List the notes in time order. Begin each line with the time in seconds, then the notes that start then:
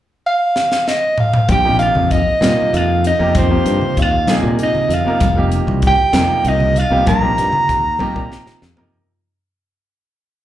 0.26 F5
0.56 snare
0.72 snare
0.88 D#5, snare
1.18 F5, mid tom
1.34 mid tom
1.49 A#1 G4 G5, kick, closed hi-hat, high conga
1.64 C3 F3 A#3 D#4 G4
1.79 F4 F5, closed hi-hat
1.95 F2, low conga
2.11 D#4 D#5, kick, closed hi-hat
2.26 muted fingered electric bass stroke
2.41 A#2 C3 F3 A#3 D#4 F4, snare, closed hi-hat, high conga
2.58 low conga
2.73 F2 F4 F5, closed hi-hat
3.04 D#4 D#5, closed hi-hat
3.19 F2 C3 F3 A#3 D#4 G4
3.35 C5, kick, closed hi-hat, high conga
3.39 C4
3.49 C3 F3 A#3 D#4 G4
3.66 G2, closed hi-hat
3.81 low conga
3.97 D#2 F5, kick, closed hi-hat
4.02 F4
4.27 C3 F3 A#3 D#4 G#4, snare, closed hi-hat, high conga
4.43 A#2, low conga
4.59 closed hi-hat
4.63 D#4 D#5
4.74 muted fingered electric bass stroke, low conga
4.89 F2, closed hi-hat
4.94 F4 F5
5.05 C3 F3 A#3 D#4 A#4, muted fingered electric bass stroke
5.21 F1, kick, closed hi-hat, high conga
5.35 C3 F3 A#3 D#4 G4
5.52 closed hi-hat
5.67 C2, low conga
5.82 kick, closed hi-hat
5.87 G4 G5
5.98 muted fingered electric bass stroke
6.13 F2 C3 F3 A#3 D#4 A#4, snare, closed hi-hat, high conga
6.30 low conga
6.45 C2 D#4 D#5, closed hi-hat
6.60 low conga
6.76 F4 F5, closed hi-hat
6.90 C2 C3 F3 A#3 D#4 G4
7.06 A#1 A#4 A#5, kick, closed hi-hat, high conga
7.21 C3 F3 A#3 D#4 G4
7.38 G2, closed hi-hat, low conga
7.53 low conga
7.69 D#2, kick, closed hi-hat
7.99 C3 F3 A#3 D#4 G4, kick, high conga
8.14 A#2, kick, low conga
8.32 snare
8.47 muted fingered electric bass stroke, snare
8.62 F2, snare
8.76 C3 F3 A#3 D#4 A#4, floor tom